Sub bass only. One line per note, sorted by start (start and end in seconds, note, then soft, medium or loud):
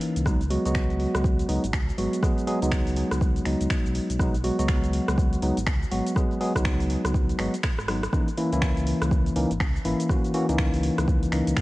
0.16 0.58 C#2 loud
0.66 1.07 C#2 loud
1.15 1.44 C#2 loud
1.49 1.59 C#2 medium
1.64 1.75 G#1 medium
1.73 1.92 C#2 loud
1.98 2.08 G#1 loud
2.62 3.04 C#2 loud
3.11 3.41 C#2 loud
3.46 3.56 C#2 loud
3.61 3.67 C#2 medium
3.85 4.00 B1 medium
4.10 4.51 B1 medium
4.59 5.00 C#2 loud
5.08 5.37 C#2 loud
5.42 5.52 C#2 medium
5.57 5.68 G#1 medium
5.67 5.85 C#2 loud
5.92 6.02 G#1 loud
6.56 6.97 C#2 loud
7.05 7.34 C#2 loud
7.39 7.49 G#1 medium
7.79 8.08 G#1 medium
8.52 8.94 C#2 loud
9.01 9.31 C#2 loud
9.36 9.46 C#2 loud
9.51 9.62 G#1 medium
9.60 9.79 C#2 loud
9.85 9.95 G#1 loud
10.49 10.90 C#2 loud
10.98 11.27 C#2 loud
11.32 11.43 C#2 loud
11.47 11.54 C#2 loud